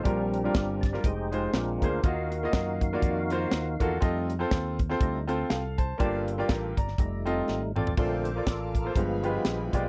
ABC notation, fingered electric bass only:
X:1
M:4/4
L:1/8
Q:"Swing" 1/4=121
K:Bb
V:1 name="Fingered electric bass" clef=bass
B,,,2 G,,,2 F,,,2 B,,, D,, | E,,2 _G,,2 F,,2 E,, =E,, | F,,2 E,,2 D,,2 C,,2 | G,,,2 A,,, G,,, F,,,2 _A,,, =A,,, |
B,,,2 A,,,2 G,,,2 B,,, =B,,, |]